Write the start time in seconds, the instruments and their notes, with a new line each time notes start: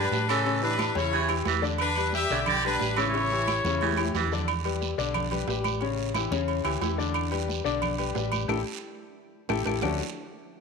Already playing: grand piano G3 G4 B4, horn section D4 B4
0.11 fingered electric bass A2, high conga, low timbale, short guiro
0.29 grand piano C#3 C#4 C#5, baritone saxophone E3, horn section C#4 A4, low agogo, short guiro, claves
0.45 grand piano C#3 C#4 C#5, high conga, low agogo, long guiro
0.62 grand piano E3 E4 G4, horn section D4 B4, high conga
0.79 high conga, low timbale, low agogo, short guiro, claves
0.95 fingered electric bass E2, grand piano C#3 C#4 C#5, horn section E4 C#5, high conga, short guiro
1.13 baritone saxophone C#3, grand piano E3 E4 G4, high conga, low agogo, long guiro
1.29 grand piano E3 E4 G4, high conga, low agogo, claves
1.45 fingered electric bass E2, baritone saxophone E3, high conga, low timbale, low agogo, short guiro
1.62 grand piano D3 D4 D5, high conga, short guiro
1.78 horn section D4 B4, high conga, low agogo, long guiro, claves
1.96 grand piano G3 G4 B4, high conga, low agogo
2.13 horn section G4 E5, high conga, low timbale, short guiro
2.30 fingered electric bass B1, baritone saxophone C#3, grand piano D3 D4 D5, high conga, short guiro
2.46 baritone saxophone D3, horn section G4 D5, high conga, low conga, low agogo, long guiro, claves
2.63 grand piano G3 G4 B4, horn section D4 B4, high conga, low agogo
2.80 fingered electric bass A1, high conga, low timbale, short guiro
2.96 grand piano C#3 C#4 C#5, baritone saxophone E3, horn section E4 C#5, high conga, low agogo, short guiro, claves
3.14 grand piano C#3 C#4 C#5, low agogo, long guiro
3.31 grand piano E3 E4 G4, high conga
3.48 high conga, low timbale, low agogo, short guiro, claves
3.64 fingered electric bass E2, grand piano C#3 C#4 C#5, high conga, short guiro
3.81 baritone saxophone C#3, grand piano E3 E4 G4, high conga, low agogo, long guiro
3.93 high conga
3.97 grand piano E3 E4 G4, low agogo, claves
4.05 high conga
4.14 fingered electric bass E2, baritone saxophone E3, low conga, low timbale, low agogo, short guiro
4.27 low conga
4.32 grand piano D3 D4 D5, short guiro
4.38 low conga
4.48 high conga, low agogo, long guiro, claves
4.65 grand piano G3 G4 B4, high conga, low agogo
4.81 high conga, low timbale, short guiro
4.98 fingered electric bass B1, grand piano D3 D4 D5, high conga, short guiro
5.14 high conga, low conga, low agogo, long guiro, claves
5.31 grand piano G3 G4 B4, high conga, low conga, low agogo
5.47 fingered electric bass A1, grand piano G3 G4 B4, high conga, low timbale, short guiro
5.64 high conga, low agogo, short guiro, claves
5.81 grand piano C#3 C#4 C#5, high conga, low agogo, long guiro
5.99 high conga
6.14 grand piano E3 E4 G4, high conga, low timbale, low agogo, short guiro, claves
6.31 fingered electric bass E2, grand piano C#3 C#4 C#5, high conga, short guiro
6.48 high conga, low agogo, long guiro
6.64 fingered electric bass D2, grand piano E3 E4 G4, high conga, low agogo, claves
6.81 fingered electric bass E2, grand piano E3 E4 G4, high conga, low timbale, low agogo, short guiro
6.98 grand piano D3 D4 D5, short guiro
7.14 high conga, low agogo, long guiro, claves
7.31 grand piano G3 G4 B4, high conga, low agogo
7.48 high conga, low timbale, short guiro
7.64 fingered electric bass B1, grand piano D3 D4 D5, high conga, short guiro
7.82 high conga, low conga, low agogo, long guiro, claves
7.98 grand piano G3 G4 B4, high conga, low agogo
8.15 fingered electric bass A1, grand piano G3 G4 B4, high conga, low timbale, short guiro
8.32 high conga, low agogo, short guiro, claves
8.48 fingered electric bass A1, grand piano E4 G4 A4, high conga, high timbale, long guiro, claves
9.49 fingered electric bass A1, grand piano E4 G4 A4, high conga, high timbale, long guiro, claves
9.65 fingered electric bass A1, grand piano E4 G4 A4, high conga, high timbale, long guiro, claves
9.82 fingered electric bass D2, grand piano D3 A3 C#4 D4 F#4 A4, low conga, low timbale, long guiro, claves